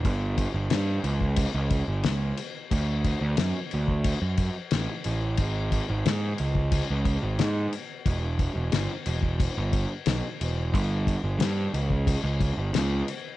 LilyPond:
<<
  \new Staff \with { instrumentName = "Picked electric bass" } { \clef bass \time 4/4 \key e \major \tempo 4 = 90 g,,8. g,,16 g,8 cis,8. cis,8 g,,16 cis,8 r8 | d,8. d,16 fis,16 r16 d,8. fis,8 r16 a,,16 r16 a,,8 | gis,,8. gis,,16 gis,8 cis,8. cis,8 gis,,16 gis,8 r8 | e,,8. e,,16 g,,16 r16 e,,8. g,,8 r16 b,,16 r16 e,,8 |
g,,8. g,,16 g,8 cis,8. cis,8 g,,16 cis,8 r8 | }
  \new DrumStaff \with { instrumentName = "Drums" } \drummode { \time 4/4 <cymc bd>8 <cymc bd>8 <cymc sn>8 cymc16 bd16 <cymc bd>8 <cymc bd>8 <cymc sn>8 cymc8 | <cymc bd>8 <cymc bd>8 <cymc sn>8 cymc16 bd16 <cymc bd>8 <cymc bd>8 <cymc sn>8 cymc8 | <cymc bd>8 <cymc bd>8 <cymc sn>8 cymc16 bd16 <cymc bd>8 <cymc bd>8 <cymc sn>8 cymc8 | <cymc bd>8 <cymc bd>8 <cymc sn>8 cymc16 bd16 <cymc bd>8 <cymc bd>8 <cymc sn>8 cymc8 |
<cymc bd>8 <cymc bd>8 <cymc sn>8 cymc16 bd16 <cymc bd>8 <cymc bd>8 <cymc sn>8 cymc8 | }
>>